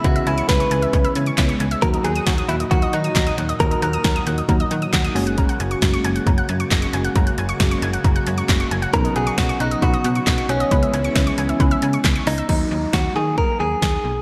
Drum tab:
CC |----------------|----------------|----------------|----------------|
HH |xxxxxxxxxxxxxxxx|xxxxxxxxxxxxxxxx|xxxxxxxxxxxxxxox|xxxxxxxxxxxxxxxx|
CP |------------x---|------------x---|------------x---|------------x---|
SD |----o-------o---|----o-------o---|----o-------o---|----o-------o---|
BD |o---o---o---o---|o---o---o---o---|o---o---o---o---|o---o---o---o---|

CC |----------------|----------------|----------------|x---------------|
HH |xxxxxxxxxxxxxxxx|xxxxxxxxxxxxxxxx|xxxxxxxxxxxxxxox|----------------|
CP |------------x---|------------x---|------------x---|----------------|
SD |----o-------o---|----o-------o---|----o-------o---|----o-------o---|
BD |o---o---o---o---|o---o---o---o---|o---o---o---o---|o---o---o---o---|